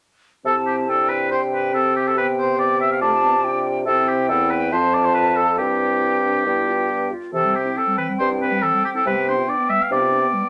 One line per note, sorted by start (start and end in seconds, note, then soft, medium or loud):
0.45 3.83 C3 soft
0.45 0.85 C4 soft
0.45 1.33 E4 soft
0.45 0.55 A4 medium
0.45 0.90 A5 soft
0.66 0.76 G4 soft
0.88 1.75 D4 soft
0.88 1.10 A4 soft
0.88 1.31 G5 soft
1.09 1.30 B4 soft
1.31 2.16 G4 soft
1.31 1.41 C5 soft
1.31 2.15 G5 soft
1.53 1.73 B4 soft
1.74 2.16 C4 soft
1.74 1.95 A4 soft
1.96 2.08 G4 soft
2.07 2.17 A4 soft
2.16 3.00 B3 soft
2.16 3.03 G4 soft
2.16 2.27 B4 medium
2.16 3.03 G5 soft
2.38 2.58 C5 soft
2.59 2.80 D5 medium
2.80 2.90 E5 medium
2.91 3.01 F5 soft
3.01 3.12 A3 soft
3.01 3.43 F4 soft
3.01 3.64 D5 medium
3.01 3.46 A5 soft
3.23 3.33 B3 soft
3.44 3.86 D4 soft
3.44 3.86 F4 soft
3.44 3.86 G5 soft
3.86 4.31 C3 soft
3.86 4.69 C4 soft
3.86 4.74 E4 soft
3.86 4.09 A4 medium
3.86 4.74 G5 soft
4.08 4.28 G4 soft
4.29 4.72 E2 soft
4.29 4.52 A4 medium
4.50 4.74 B4 medium
4.72 5.60 F2 soft
4.72 5.57 C4 soft
4.72 5.58 F4 soft
4.72 4.95 C5 medium
4.72 5.60 A5 soft
4.93 5.06 D5 medium
5.04 5.14 C5 soft
5.14 5.38 B4 soft
5.36 5.57 A4 soft
5.58 6.46 G2 soft
5.58 6.44 C4 soft
5.58 5.97 E4 soft
5.58 7.08 G4 soft
5.58 6.46 G5 soft
6.01 6.11 E4 soft
6.24 6.47 D4 soft
6.46 7.10 G2 soft
6.46 7.10 B3 soft
6.46 6.69 E4 soft
6.46 7.10 G5 soft
6.68 6.90 F4 soft
6.90 7.11 G4 soft
7.11 7.33 F4 soft
7.33 7.69 C3 soft
7.33 7.46 E3 soft
7.33 9.02 C4 soft
7.33 7.56 A4 soft
7.33 10.49 G5 soft
7.45 7.56 G3 soft
7.55 7.67 C4 soft
7.55 7.78 G4 soft
7.66 7.78 E4 soft
7.76 7.88 C4 soft
7.76 7.97 A4 soft
7.87 7.99 G3 soft
7.97 8.10 E3 soft
7.97 8.07 B4 soft
8.09 8.18 G3 soft
8.19 8.56 G2 soft
8.19 8.32 C4 soft
8.19 8.29 C5 medium
8.30 8.42 E4 soft
8.40 8.53 C4 soft
8.40 8.64 B4 soft
8.51 8.64 G3 soft
8.62 8.75 E3 soft
8.62 8.84 A4 soft
8.73 8.85 G3 soft
8.84 8.96 C4 soft
8.84 8.90 G4 soft
8.95 9.05 E4 soft
8.95 9.06 A4 soft
9.05 9.41 C3 soft
9.05 9.17 G3 soft
9.05 10.49 B3 soft
9.05 9.30 B4 medium
9.16 9.29 B3 soft
9.27 9.38 D4 soft
9.27 9.50 C5 soft
9.37 9.49 F4 soft
9.48 9.60 D4 soft
9.48 9.71 D5 medium
9.59 9.71 B3 soft
9.69 9.81 G3 soft
9.69 9.83 E5 medium
9.80 9.90 B3 soft
9.80 9.91 F5 medium
9.90 10.26 C3 soft
9.90 10.02 D4 soft
9.90 10.49 D5 medium
10.01 10.13 F4 soft
10.11 10.24 D4 soft
10.22 10.35 B3 soft
10.33 10.45 G3 soft
10.43 10.49 B3 soft